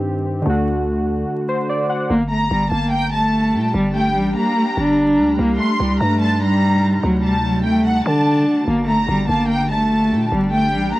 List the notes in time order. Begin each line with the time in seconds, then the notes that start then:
Already playing: G2 D#3 C4 G4
0.42 D2 D3 A3
0.49 F#4
1.48 C5
1.69 D5
1.89 F#5
2.10 G1 G3 A#3 D4 G4
2.30 A3 A#5
2.51 G1 G3
2.71 G1 A#3 A5
2.92 G5
3.12 A3 A5
3.54 A#2
3.74 G1 G3
3.95 A3 G5
4.15 A1 G3
4.36 A#3 A#5
4.77 G1 D4
5.18 D2
5.39 C2 A#3
5.59 A3 C6
5.80 C2 G3
6.00 G2 A3 A#5
6.21 A5
6.42 G3 A#5
7.03 D2 F#3
7.24 G3 A5
7.44 F#3
7.65 A3 G5
7.86 F#5
8.06 D3 D4 A5
8.68 G1 G3 A#3 D4 G4
8.88 A3 A#5
9.09 G1 G3
9.29 G1 A#3 A5
9.50 G5
9.70 A3 A5
10.11 A#2
10.32 G1 G3
10.52 A3 G5
10.73 A1 G3
10.94 A#3 A#5